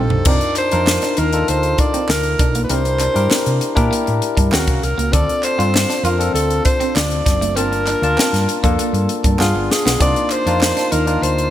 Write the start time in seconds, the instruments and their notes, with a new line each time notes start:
Already playing: tine electric piano D4 D#4 G4 C5, alto saxophone A4
0.10 fingered electric bass B1, floor tom
0.25 fingered electric bass C2, clean electric guitar C4, tine electric piano D4 D#4 F4 A#4, alto saxophone D5, kick, crash
0.41 closed hi-hat
0.55 alto saxophone C5, muted clean electric guitar stroke, clap, closed hi-hat
0.71 fingered electric bass F2, tine electric piano D4 D#4 F4 A#4, clean electric guitar D4, closed hi-hat
0.87 muted clean electric guitar stroke, snare, clap
1.02 clean electric guitar D4, snare, closed hi-hat
1.17 fingered electric bass D#2, clean electric guitar D#4, alto saxophone A#4, closed hi-hat
1.33 tine electric piano D4 D#4 F4 A4, closed hi-hat
1.48 fingered electric bass D2, alto saxophone C5, muted clean electric guitar stroke, closed hi-hat
1.63 closed hi-hat
1.78 clean electric guitar D4, alto saxophone D5, kick, closed hi-hat
1.94 clean electric guitar C4, closed hi-hat
2.09 fingered electric bass D2, alto saxophone A#4, muted clean electric guitar stroke, snare, clap
2.23 closed hi-hat
2.39 fingered electric bass B1, clean electric guitar D4, kick, closed hi-hat
2.55 clean electric guitar A#3, closed hi-hat
2.64 alto saxophone B4
2.69 fingered electric bass C2, clean electric guitar C4, tine electric piano D4 E4 G4 A#4, alto saxophone C5, closed hi-hat
2.85 muted clean electric guitar stroke, closed hi-hat
2.99 clean electric guitar D4, clap, closed hi-hat
3.14 fingered electric bass G2, tine electric piano D4 E4 G4 A#4, closed hi-hat
3.31 clean electric guitar C4, snare, clap
3.46 fingered electric bass C3, closed hi-hat
3.61 muted clean electric guitar stroke, closed hi-hat
3.75 fingered electric bass A#2, clean electric guitar A#3, tine electric piano D4 E4 G4 A#4, kick, closed hi-hat
3.91 clean electric guitar A#3, closed hi-hat
4.06 fingered electric bass A2, muted clean electric guitar stroke, closed hi-hat
4.22 closed hi-hat
4.37 fingered electric bass G2, clean electric guitar D4, kick, closed hi-hat
4.52 fingered electric bass D#2, clean electric guitar C4, tine electric piano C#4 F#4 G#4 F5, alto saxophone F#4, snare, clap
4.59 tine electric piano A#4
4.67 fingered electric bass C2, muted clean electric guitar stroke, kick, closed hi-hat
4.83 fingered electric bass C2, alto saxophone A#4, closed hi-hat
4.98 fingered electric bass C#2, clean electric guitar A#3, closed hi-hat
5.12 fingered electric bass D2, tine electric piano C4 D4 F4 A4, clean electric guitar D4, alto saxophone D5, kick, closed hi-hat
5.29 closed hi-hat
5.43 alto saxophone C5, muted clean electric guitar stroke, clap, closed hi-hat
5.58 fingered electric bass G2, tine electric piano C4 D4 F4 C5, clean electric guitar F4, closed hi-hat
5.74 muted clean electric guitar stroke, snare, clap
5.90 clean electric guitar D4, snare, closed hi-hat
6.03 fingered electric bass F2, clean electric guitar F4, alto saxophone A#4, closed hi-hat
6.19 tine electric piano C4 D4 F4 A4, closed hi-hat
6.34 fingered electric bass D2, alto saxophone A4, muted clean electric guitar stroke, closed hi-hat
6.50 closed hi-hat
6.64 clean electric guitar D4, alto saxophone C5, kick, closed hi-hat
6.80 clean electric guitar C4, closed hi-hat
6.95 fingered electric bass D2, alto saxophone D5, muted clean electric guitar stroke, snare, clap
7.11 closed hi-hat
7.26 fingered electric bass F#1, clean electric guitar D4, kick, snare, closed hi-hat
7.41 clean electric guitar A3, closed hi-hat
7.56 fingered electric bass G1, tine electric piano A#3 D4 F4 A5, clean electric guitar C4, alto saxophone A#4, closed hi-hat
7.72 muted clean electric guitar stroke, closed hi-hat
7.87 clean electric guitar D4, clap, closed hi-hat
8.02 fingered electric bass D2, tine electric piano A#3 D4 F4 A5, closed hi-hat
8.17 clean electric guitar C4, snare, clap
8.33 fingered electric bass G2, snare, closed hi-hat
8.48 muted clean electric guitar stroke, closed hi-hat
8.63 fingered electric bass F2, tine electric piano A#3 D4 F4 A4, clean electric guitar A#3, kick, closed hi-hat
8.79 clean electric guitar A#3, closed hi-hat
8.93 fingered electric bass G2, muted clean electric guitar stroke, closed hi-hat
9.09 closed hi-hat
9.24 fingered electric bass G2, clean electric guitar D4, kick, closed hi-hat
9.38 fingered electric bass G2, tine electric piano B3 D4 F4 G#4, clean electric guitar B3, alto saxophone F4, snare, clap
9.55 fingered electric bass G1, muted clean electric guitar stroke
9.71 alto saxophone G#4, snare
9.86 fingered electric bass B1, clean electric guitar B3, snare
10.00 fingered electric bass C2, tine electric piano A#3 D4 D#4 F4, clean electric guitar C4, alto saxophone D5, kick, closed hi-hat
10.16 closed hi-hat
10.30 alto saxophone C5, muted clean electric guitar stroke, clap, closed hi-hat
10.46 fingered electric bass F2, tine electric piano A#3 D4 D#4 F4, clean electric guitar D4, closed hi-hat
10.61 snare, clap
10.77 clean electric guitar D4, snare, closed hi-hat
10.92 fingered electric bass D#2, clean electric guitar D#4, alto saxophone A#4, closed hi-hat
11.06 tine electric piano A#3 D4 D#4 F4, closed hi-hat
11.22 fingered electric bass D2, alto saxophone C5, muted clean electric guitar stroke, closed hi-hat
11.38 closed hi-hat